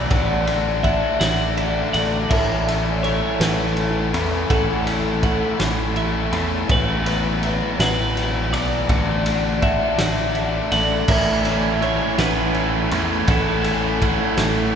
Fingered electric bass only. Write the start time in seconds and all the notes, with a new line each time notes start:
0.11 A1
1.21 A1
1.94 A1
2.31 A1
3.40 A1
4.14 E2
4.50 A1
5.60 A1
6.32 E2
6.70 A1
7.79 A1
8.52 B1
8.89 A1
9.98 A1
10.72 A1
11.08 A1
12.19 A1
12.92 E2
13.28 A1
14.38 A1